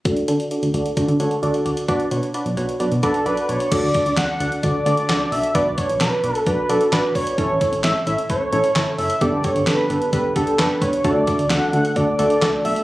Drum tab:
CC |----------------|----------------|x---------------|----------------|
HH |xxxxxxxxxxxxxxxx|xxxxxxxxxxxxxxxx|x-xxx-xxx-xxx-ox|x-xxx-xxx-xxx-ox|
CP |----------------|----------------|----x-------x---|----x-------x---|
SD |----------------|----------------|----o-------o---|----o-------o---|
BD |o-------o-------|o---------o-----|o-o-----o-------|o-o-----o-----o-|

CC |----------------|----------------|----------------|
HH |x-xxx-xxx-xxx-ox|x-xxx-xxx-xxx-xx|x-xxx-xxx-xxx-ox|
CP |----x-------x---|----x-------x---|----x-------x---|
SD |----o-------o---|----o-------o---|----o-------o---|
BD |o-o-----o-------|o-o-----o-o---o-|o-o-----o-------|